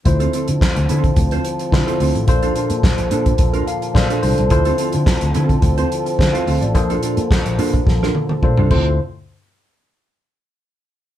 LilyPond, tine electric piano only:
\new Staff \with { instrumentName = "Tine electric piano" } { \time 4/4 \key d \minor \tempo 4 = 107 << { r1 | r2 r8 f''8 d''8 c''8 | r2. c''16 f''8 d''16~ | d''16 r2. r8. |
r1 | } \\ { <d a e' f' c''>4. r4. <d a e' f' c''>4 | <bes, bes d' a' c''>4. r4. <bes, bes d' a' c''>4 | <d a e' f' c''>4. r2 r8 | <bes, bes d' a' c''>4. r4. <bes, bes d' a' c''>8 <d a e' f' c''>8 |
r1 | } >> }